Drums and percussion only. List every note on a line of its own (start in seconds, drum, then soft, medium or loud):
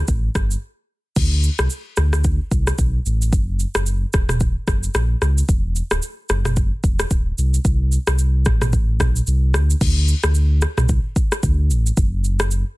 0.08 kick loud
0.08 shaker medium
0.35 kick loud
0.35 cross-stick medium
0.35 shaker medium
0.51 shaker medium
1.16 kick loud
1.16 crash loud
1.16 shaker medium
1.43 shaker medium
1.59 cross-stick loud
1.59 shaker medium
1.70 shaker medium
1.97 cross-stick medium
1.97 shaker medium
2.13 cross-stick medium
2.13 shaker medium
2.24 kick loud
2.24 shaker medium
2.51 kick loud
2.51 shaker medium
2.67 cross-stick medium
2.67 shaker medium
2.78 kick medium
2.78 shaker medium
3.06 shaker medium
3.22 shaker medium
3.33 kick loud
3.33 shaker medium
3.60 shaker medium
3.75 cross-stick loud
3.75 shaker medium
3.86 shaker medium
4.13 kick loud
4.13 cross-stick medium
4.13 shaker medium
4.29 cross-stick medium
4.29 mid tom medium
4.29 shaker medium
4.40 kick loud
4.40 shaker medium
4.68 kick loud
4.68 cross-stick medium
4.68 shaker medium
4.83 shaker medium
4.95 cross-stick loud
4.95 shaker medium
5.22 cross-stick medium
5.22 shaker soft
5.38 shaker medium
5.49 kick loud
5.49 shaker medium
5.76 shaker medium
5.91 cross-stick loud
5.91 shaker medium
6.02 shaker medium
6.29 cross-stick medium
6.29 shaker medium
6.45 cross-stick medium
6.45 mid tom loud
6.45 shaker medium
6.56 kick loud
6.56 shaker medium
6.84 kick loud
6.84 shaker medium
6.99 cross-stick loud
6.99 shaker medium
7.11 kick medium
7.11 shaker medium
7.38 shaker medium
7.54 shaker medium
7.65 kick loud
7.65 shaker medium
7.92 shaker medium
8.07 cross-stick loud
8.07 shaker medium
8.19 shaker medium
8.45 kick loud
8.45 cross-stick medium
8.45 shaker medium
8.61 cross-stick medium
8.61 mid tom loud
8.61 shaker medium
8.73 kick loud
8.73 shaker medium
9.00 kick loud
9.00 cross-stick medium
9.00 mid tom loud
9.00 shaker medium
9.16 shaker medium
9.27 shaker medium
9.54 cross-stick medium
9.54 shaker medium
9.70 shaker medium
9.81 kick loud
9.81 crash loud
9.81 shaker medium
10.08 shaker medium
10.23 cross-stick loud
10.23 shaker medium
10.35 shaker medium
10.62 cross-stick medium
10.62 shaker medium
10.77 cross-stick medium
10.77 mid tom medium
10.77 shaker medium
10.89 kick loud
10.89 shaker medium
11.16 kick loud
11.16 shaker medium
11.32 cross-stick loud
11.32 shaker medium
11.43 kick medium
11.43 shaker medium
11.71 shaker medium
11.87 shaker medium
11.97 kick loud
11.97 shaker medium
12.24 shaker medium
12.40 cross-stick loud
12.40 shaker medium
12.51 shaker medium